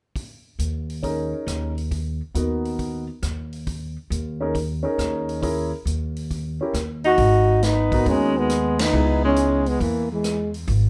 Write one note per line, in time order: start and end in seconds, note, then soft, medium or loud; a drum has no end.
0.16 kick soft
0.16 open hi-hat soft
0.59 1.32 D#2 medium
0.59 closed hi-hat soft
0.90 open hi-hat soft
1.03 1.71 C#4 soft
1.03 1.71 D#4 soft
1.03 1.71 G#4 soft
1.03 1.72 A#4 soft
1.03 kick soft
1.03 open hi-hat soft
1.47 2.20 D#2 medium
1.47 cross-stick soft
1.47 closed hi-hat soft
1.78 open hi-hat soft
1.91 kick soft
1.91 open hi-hat soft
2.35 3.08 D#2 medium
2.35 3.03 B3 soft
2.35 3.03 D#4 soft
2.35 3.03 F#4 soft
2.35 3.04 A#4 soft
2.35 closed hi-hat soft
2.65 open hi-hat soft
2.79 kick soft
2.79 open hi-hat soft
3.22 3.95 D#2 medium
3.22 cross-stick soft
3.22 closed hi-hat soft
3.52 open hi-hat soft
3.67 kick soft
3.67 open hi-hat soft
4.10 4.83 D#2 medium
4.10 closed hi-hat soft
4.41 4.53 C#4 medium
4.41 4.54 D#4 soft
4.41 4.54 G#4 soft
4.41 4.54 A#4 medium
4.55 kick soft
4.55 open hi-hat soft
4.83 5.39 C#4 medium
4.83 5.39 D#4 soft
4.83 5.40 G#4 soft
4.83 5.40 A#4 medium
4.98 5.71 D#2 medium
4.98 cross-stick soft
4.98 closed hi-hat soft
5.29 open hi-hat soft
5.42 5.69 C#4 soft
5.42 5.69 E4 soft
5.42 5.70 G#4 soft
5.42 5.70 A#4 medium
5.42 kick soft
5.42 open hi-hat soft
5.85 6.58 D#2 medium
5.85 closed hi-hat soft
6.16 open hi-hat soft
6.31 kick soft
6.31 open hi-hat soft
6.61 6.73 C#4 medium
6.61 6.74 E4 soft
6.61 6.74 G4 soft
6.61 6.74 A#4 soft
6.74 7.15 D#2 medium
6.74 cross-stick soft
6.74 closed hi-hat soft
7.04 7.65 D#4 medium
7.04 7.66 F#4 medium
7.04 open hi-hat soft
7.18 8.02 G#1 medium
7.18 kick soft
7.18 open hi-hat soft
7.63 8.10 B3 medium
7.63 8.11 D#4 medium
7.63 snare soft
7.63 closed hi-hat soft
7.92 8.47 B3 medium
7.92 8.47 D#4 medium
7.92 8.48 F#4 medium
7.92 8.48 A#4 medium
7.92 kick soft
7.92 open hi-hat soft
8.06 8.89 D#2 medium
8.06 8.38 G#3 medium
8.06 8.41 C#4 medium
8.06 kick soft
8.06 open hi-hat soft
8.38 8.82 G#3 medium
8.38 8.83 B3 medium
8.49 cross-stick medium
8.49 closed hi-hat soft
8.79 9.24 B3 medium
8.79 9.24 D#4 medium
8.79 snare medium
8.79 ride medium
8.93 9.77 C#2 medium
8.93 9.61 B3 medium
8.93 9.61 D#4 soft
8.93 9.61 E4 soft
8.93 9.61 G#4 medium
9.24 9.69 G#3 medium
9.24 9.70 C#4 medium
9.36 closed hi-hat soft
9.66 9.82 G#3 medium
9.66 9.84 B3 medium
9.66 open hi-hat soft
9.81 10.64 E2 medium
9.81 10.11 E3 medium
9.81 10.11 A#3 medium
9.81 kick soft
9.81 open hi-hat soft
10.11 10.52 E3 soft
10.11 10.52 G#3 medium
10.24 cross-stick medium
10.24 closed hi-hat soft
10.54 open hi-hat soft
10.67 10.90 G#1 medium
10.67 kick soft
10.67 open hi-hat soft